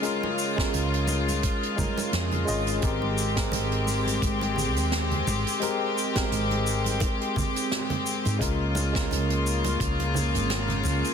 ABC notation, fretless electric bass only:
X:1
M:4/4
L:1/16
Q:"Swing 16ths" 1/4=86
K:Ab
V:1 name="Fretless electric bass" clef=bass
z4 D,,4 z4 F,,2 A,,,2 | A,,,4 A,,,4 A,,,3 E,,3 A,,, z | z4 A,,,4 z6 z A,, | D,,4 D,,4 D,,3 A,,,3 D,, z |]